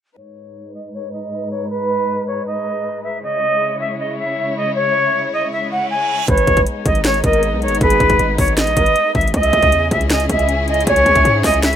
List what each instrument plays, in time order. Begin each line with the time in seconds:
0.17 string section G#2 G#3 D#4 B4, flute C#5
0.74 flute D#5
0.93 flute C#5
1.12 flute D#5
1.50 flute C#5
1.70 flute B4
2.27 flute C#5
2.46 flute D#5
3.03 flute E5
3.22 string section C#3 E4 C#5, flute D#5
3.80 flute E5
3.99 flute D#5
4.18 flute E5
4.56 flute D#5
4.75 flute C#5
5.33 flute D#5
5.52 flute E5, reverse cymbal
5.71 flute F#5
5.90 flute G#5
6.28 808-style bass G#1, string section G#3 B3 D#4, soft synth lead B4, flute C#5, kick, closed hi-hat
6.38 closed hi-hat
6.47 808-style bass G#1, kick, closed hi-hat
6.57 kick, closed hi-hat
6.67 closed hi-hat
6.86 808-style bass G#1, flute D#5, kick, closed hi-hat
6.95 closed hi-hat
7.05 flute C#5, snare, closed hi-hat
7.14 closed hi-hat
7.24 808-style bass G#1, soft synth lead A#4, flute D#5, kick, closed hi-hat
7.33 closed hi-hat
7.43 closed hi-hat
7.53 808-style bass B1
7.62 flute C#5, closed hi-hat
7.67 808-style bass G#1, closed hi-hat
7.75 closed hi-hat
7.81 808-style bass G#1, soft synth lead G#4, flute B4, kick, closed hi-hat
7.90 closed hi-hat
8.00 808-style bass G#1, kick, closed hi-hat
8.10 kick, closed hi-hat
8.19 808-style bass G#1, closed hi-hat
8.38 808-style bass G#1, flute C#5, kick, open hi-hat
8.48 closed hi-hat
8.57 flute D#5, snare, closed hi-hat
8.67 808-style bass A#1, closed hi-hat
8.77 808-style bass G#1, soft synth lead B4, kick, closed hi-hat
8.86 closed hi-hat
8.96 closed hi-hat
9.15 808-style bass G#1, flute E5, kick, closed hi-hat
9.21 closed hi-hat
9.28 closed hi-hat
9.34 808-style bass C#2, string section C#3 C#4 E4 G#4, flute D#5, soft synth lead E5, kick, closed hi-hat
9.43 closed hi-hat
9.53 808-style bass C#2, kick, closed hi-hat
9.62 kick, closed hi-hat
9.72 808-style bass E2, closed hi-hat
9.91 808-style bass C#2, flute E5, kick, closed hi-hat
10.01 closed hi-hat
10.10 flute D#5, snare, closed hi-hat
10.20 closed hi-hat
10.29 808-style bass C#2, soft synth lead D#5, flute E5, kick, closed hi-hat
10.39 closed hi-hat
10.49 closed hi-hat
10.68 flute D#5, closed hi-hat
10.74 closed hi-hat
10.81 closed hi-hat
10.87 808-style bass C#2, flute C#5, soft synth lead C#5, kick, closed hi-hat
10.96 closed hi-hat
11.06 808-style bass C#2, kick, closed hi-hat
11.15 kick, closed hi-hat
11.25 808-style bass G#2, closed hi-hat
11.44 808-style bass C#2, flute D#5, kick, snare, open hi-hat
11.54 closed hi-hat
11.63 flute E5, snare, closed hi-hat
11.73 closed hi-hat